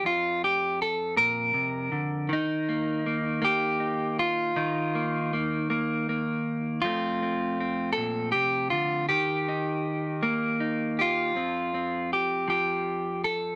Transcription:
0, 0, Header, 1, 2, 480
1, 0, Start_track
1, 0, Tempo, 754717
1, 21, Time_signature, 6, 3, 24, 8
1, 8621, End_track
2, 0, Start_track
2, 0, Title_t, "Clean electric guitar"
2, 0, Program_c, 0, 27
2, 27, Note_on_c, 0, 41, 71
2, 39, Note_on_c, 0, 65, 93
2, 271, Note_off_c, 0, 65, 0
2, 281, Note_on_c, 0, 67, 96
2, 512, Note_off_c, 0, 67, 0
2, 520, Note_on_c, 0, 69, 96
2, 741, Note_on_c, 0, 46, 68
2, 744, Note_off_c, 0, 69, 0
2, 746, Note_on_c, 0, 70, 100
2, 975, Note_off_c, 0, 46, 0
2, 978, Note_on_c, 0, 48, 55
2, 1218, Note_off_c, 0, 48, 0
2, 1220, Note_on_c, 0, 50, 58
2, 1457, Note_on_c, 0, 51, 73
2, 1463, Note_off_c, 0, 50, 0
2, 1467, Note_off_c, 0, 70, 0
2, 1468, Note_off_c, 0, 41, 0
2, 1481, Note_on_c, 0, 63, 87
2, 1710, Note_on_c, 0, 58, 48
2, 1945, Note_off_c, 0, 58, 0
2, 1948, Note_on_c, 0, 58, 46
2, 2171, Note_off_c, 0, 58, 0
2, 2173, Note_on_c, 0, 58, 69
2, 2191, Note_on_c, 0, 67, 93
2, 2410, Note_off_c, 0, 63, 0
2, 2417, Note_on_c, 0, 63, 38
2, 2664, Note_off_c, 0, 67, 0
2, 2667, Note_on_c, 0, 65, 95
2, 2872, Note_off_c, 0, 58, 0
2, 2874, Note_off_c, 0, 63, 0
2, 2894, Note_off_c, 0, 51, 0
2, 2901, Note_on_c, 0, 51, 75
2, 2903, Note_on_c, 0, 63, 69
2, 3148, Note_on_c, 0, 58, 46
2, 3383, Note_off_c, 0, 58, 0
2, 3388, Note_off_c, 0, 65, 0
2, 3391, Note_on_c, 0, 58, 46
2, 3617, Note_off_c, 0, 58, 0
2, 3625, Note_on_c, 0, 58, 65
2, 3867, Note_off_c, 0, 58, 0
2, 3874, Note_on_c, 0, 58, 43
2, 4322, Note_off_c, 0, 58, 0
2, 4335, Note_on_c, 0, 65, 91
2, 4344, Note_off_c, 0, 63, 0
2, 4345, Note_off_c, 0, 51, 0
2, 4345, Note_on_c, 0, 41, 63
2, 4349, Note_on_c, 0, 53, 46
2, 4354, Note_on_c, 0, 57, 43
2, 4356, Note_on_c, 0, 60, 52
2, 4587, Note_off_c, 0, 60, 0
2, 4595, Note_on_c, 0, 60, 46
2, 4829, Note_off_c, 0, 60, 0
2, 4836, Note_on_c, 0, 60, 46
2, 5038, Note_off_c, 0, 65, 0
2, 5041, Note_on_c, 0, 69, 101
2, 5065, Note_on_c, 0, 46, 70
2, 5288, Note_off_c, 0, 69, 0
2, 5290, Note_on_c, 0, 67, 86
2, 5302, Note_off_c, 0, 46, 0
2, 5305, Note_on_c, 0, 48, 62
2, 5533, Note_off_c, 0, 67, 0
2, 5535, Note_on_c, 0, 65, 86
2, 5541, Note_off_c, 0, 48, 0
2, 5544, Note_on_c, 0, 50, 55
2, 5759, Note_off_c, 0, 53, 0
2, 5762, Note_off_c, 0, 57, 0
2, 5776, Note_off_c, 0, 65, 0
2, 5779, Note_on_c, 0, 67, 79
2, 5784, Note_on_c, 0, 51, 68
2, 5786, Note_off_c, 0, 41, 0
2, 5786, Note_off_c, 0, 50, 0
2, 5792, Note_off_c, 0, 60, 0
2, 6032, Note_on_c, 0, 63, 44
2, 6504, Note_on_c, 0, 58, 68
2, 6737, Note_off_c, 0, 63, 0
2, 6744, Note_on_c, 0, 63, 41
2, 6982, Note_off_c, 0, 67, 0
2, 6989, Note_on_c, 0, 67, 46
2, 7005, Note_on_c, 0, 65, 87
2, 7196, Note_off_c, 0, 58, 0
2, 7196, Note_off_c, 0, 63, 0
2, 7199, Note_off_c, 0, 67, 0
2, 7217, Note_on_c, 0, 41, 55
2, 7220, Note_off_c, 0, 51, 0
2, 7223, Note_on_c, 0, 53, 42
2, 7229, Note_on_c, 0, 60, 41
2, 7466, Note_off_c, 0, 60, 0
2, 7469, Note_on_c, 0, 60, 35
2, 7712, Note_off_c, 0, 65, 0
2, 7715, Note_on_c, 0, 67, 67
2, 7933, Note_off_c, 0, 53, 0
2, 7935, Note_on_c, 0, 53, 54
2, 7941, Note_off_c, 0, 67, 0
2, 7949, Note_on_c, 0, 67, 68
2, 8420, Note_off_c, 0, 67, 0
2, 8422, Note_on_c, 0, 69, 80
2, 8621, Note_off_c, 0, 41, 0
2, 8621, Note_off_c, 0, 53, 0
2, 8621, Note_off_c, 0, 60, 0
2, 8621, Note_off_c, 0, 69, 0
2, 8621, End_track
0, 0, End_of_file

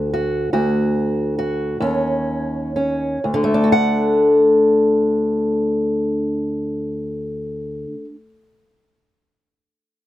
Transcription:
0, 0, Header, 1, 2, 480
1, 0, Start_track
1, 0, Key_signature, 2, "major"
1, 0, Tempo, 841515
1, 793, Tempo, 898204
1, 1273, Tempo, 952381
1, 1753, Time_signature, 12, 3, 24, 8
1, 1753, Tempo, 983607
1, 5084, End_track
2, 0, Start_track
2, 0, Title_t, "Steel-string acoustic guitar"
2, 0, Program_c, 0, 25
2, 0, Note_on_c, 0, 38, 66
2, 0, Note_on_c, 0, 66, 44
2, 0, Note_on_c, 0, 73, 99
2, 70, Note_off_c, 0, 66, 0
2, 77, Note_on_c, 0, 66, 47
2, 295, Note_off_c, 0, 38, 0
2, 296, Note_off_c, 0, 66, 0
2, 302, Note_on_c, 0, 38, 69
2, 303, Note_on_c, 0, 66, 46
2, 784, Note_off_c, 0, 66, 0
2, 790, Note_on_c, 0, 66, 47
2, 1000, Note_off_c, 0, 66, 0
2, 1012, Note_off_c, 0, 38, 0
2, 1014, Note_on_c, 0, 39, 73
2, 1023, Note_on_c, 0, 61, 50
2, 1504, Note_off_c, 0, 61, 0
2, 1510, Note_on_c, 0, 61, 41
2, 1716, Note_off_c, 0, 39, 0
2, 1724, Note_off_c, 0, 61, 0
2, 1753, Note_on_c, 0, 38, 66
2, 1754, Note_off_c, 0, 73, 0
2, 1801, Note_on_c, 0, 50, 59
2, 1849, Note_on_c, 0, 57, 57
2, 1900, Note_on_c, 0, 62, 55
2, 1946, Note_on_c, 0, 66, 51
2, 1986, Note_off_c, 0, 66, 0
2, 1988, Note_on_c, 0, 78, 79
2, 4001, Note_off_c, 0, 38, 0
2, 4049, Note_off_c, 0, 50, 0
2, 4097, Note_off_c, 0, 57, 0
2, 4148, Note_off_c, 0, 62, 0
2, 4217, Note_off_c, 0, 78, 0
2, 5084, End_track
0, 0, End_of_file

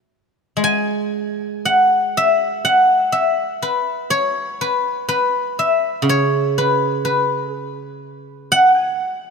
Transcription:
0, 0, Header, 1, 2, 480
1, 0, Start_track
1, 0, Tempo, 1022147
1, 29, Time_signature, 4, 2, 24, 8
1, 989, Tempo, 985222
1, 4495, End_track
2, 0, Start_track
2, 0, Title_t, "Guzheng"
2, 0, Program_c, 0, 107
2, 266, Note_on_c, 0, 56, 52
2, 300, Note_on_c, 0, 80, 82
2, 777, Note_on_c, 0, 78, 75
2, 1003, Note_off_c, 0, 80, 0
2, 1021, Note_on_c, 0, 76, 75
2, 1251, Note_off_c, 0, 78, 0
2, 1253, Note_on_c, 0, 78, 75
2, 1483, Note_off_c, 0, 76, 0
2, 1485, Note_on_c, 0, 76, 73
2, 1706, Note_off_c, 0, 56, 0
2, 1729, Note_on_c, 0, 71, 64
2, 1962, Note_on_c, 0, 73, 84
2, 2035, Note_off_c, 0, 78, 0
2, 2208, Note_off_c, 0, 71, 0
2, 2210, Note_on_c, 0, 71, 70
2, 2324, Note_off_c, 0, 76, 0
2, 2439, Note_off_c, 0, 71, 0
2, 2441, Note_on_c, 0, 71, 76
2, 2686, Note_on_c, 0, 76, 71
2, 2892, Note_off_c, 0, 73, 0
2, 2897, Note_on_c, 0, 49, 58
2, 2932, Note_on_c, 0, 73, 83
2, 3167, Note_off_c, 0, 71, 0
2, 3169, Note_on_c, 0, 71, 63
2, 3395, Note_off_c, 0, 71, 0
2, 3397, Note_on_c, 0, 71, 60
2, 3526, Note_off_c, 0, 76, 0
2, 3621, Note_off_c, 0, 71, 0
2, 3621, Note_on_c, 0, 68, 60
2, 3861, Note_off_c, 0, 73, 0
2, 4113, Note_on_c, 0, 78, 102
2, 4249, Note_off_c, 0, 78, 0
2, 4249, Note_on_c, 0, 80, 102
2, 4346, Note_off_c, 0, 49, 0
2, 4395, Note_off_c, 0, 68, 0
2, 4495, Note_off_c, 0, 80, 0
2, 4495, End_track
0, 0, End_of_file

